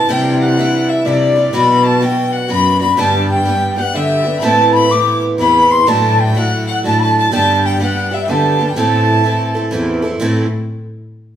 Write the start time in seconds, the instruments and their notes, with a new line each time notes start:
Already playing: fiddle A5
0.09 twelve-string acoustic guitar C3 E3 G3 D4 E4, cello C3, fiddle G5, flute G5
0.40 fiddle F#5, flute F#5
0.57 twelve-string acoustic guitar E3 G3 D4 E4
0.89 fiddle E5, flute E5
1.05 cello C3, twelve-string acoustic guitar E3 G3 D4 E4, fiddle D5, flute D5
1.36 twelve-string acoustic guitar G3 D4 E4
1.53 twelve-string acoustic guitar B2 F#3 B3 D4 F#4, cello B2, fiddle B5, flute B5
1.84 fiddle A5, flute A5
2.01 twelve-string acoustic guitar F#3 B3 D4 F#4, fiddle G5, flute G5
2.33 fiddle F#5, flute F#5
2.48 cello F#2, twelve-string acoustic guitar F#3 B3 D4 F#4, fiddle B5, flute B5
2.80 twelve-string acoustic guitar B3 D4 F#4, fiddle B5, flute B5
2.97 twelve-string acoustic guitar G2 D3 G3 B3 D4 G4, cello G2, fiddle A5, flute A5
3.28 fiddle G5, flute G5
3.45 twelve-string acoustic guitar G3 B3 D4 G4
3.76 twelve-string acoustic guitar G3 B3 D4 G4, flute F#5, fiddle F#5
3.94 cello D3, twelve-string acoustic guitar G3 B3 D4 G4, flute E5, fiddle E5
4.24 twelve-string acoustic guitar G3 B3 D4 G4
4.39 twelve-string acoustic guitar A2 E3, cello A2, flute A5, fiddle B5
4.43 twelve-string acoustic guitar B3 C4 E4, fiddle A5
4.73 flute B5, fiddle B5
4.90 twelve-string acoustic guitar E3 B3 C4 E4, flute D6, fiddle D6
5.38 cello E2, twelve-string acoustic guitar E3 B3 C4 E4, flute B5, fiddle B5
5.71 fiddle C6, flute C6
5.87 twelve-string acoustic guitar A2 F#3 A3 D4 E4, cello A2, fiddle A5, flute A5
6.20 fiddle G5, flute G5
6.35 twelve-string acoustic guitar F#3 A3 D4 E4, fiddle F#5, flute F#5
6.66 fiddle F#5, flute F#5
6.83 cello A2, twelve-string acoustic guitar F#3 A3 D4 E4, fiddle A5, flute A5
6.99 fiddle A5, flute A5 B5
7.17 fiddle A5, flute A5
7.32 twelve-string acoustic guitar G2 D3 G3 B3 D4 G4, cello G2, fiddle A5, flute A5
7.65 fiddle G5, flute G5
7.80 twelve-string acoustic guitar G3 B3 D4 G4, fiddle F#5, flute F#5
8.11 twelve-string acoustic guitar G3 B3 D4 G4, fiddle E5, flute E5
8.25 cello D3, twelve-string acoustic guitar G3, fiddle G5
8.29 twelve-string acoustic guitar B3 D4 G4, fiddle A5, flute A5
8.59 twelve-string acoustic guitar G3 B3 D4 G4
8.68 fiddle G5, flute G5
8.76 twelve-string acoustic guitar A2 E3 C4 E4 A4, cello A2, fiddle A5, flute A5
9.24 twelve-string acoustic guitar E3 C4 E4 A4
9.55 twelve-string acoustic guitar C4 E4 A4
9.71 cello E2, twelve-string acoustic guitar E3 C4 E4 A4
10.02 twelve-string acoustic guitar C4 E4 A4
10.20 twelve-string acoustic guitar A2 E3 C4 E4 A4, cello A2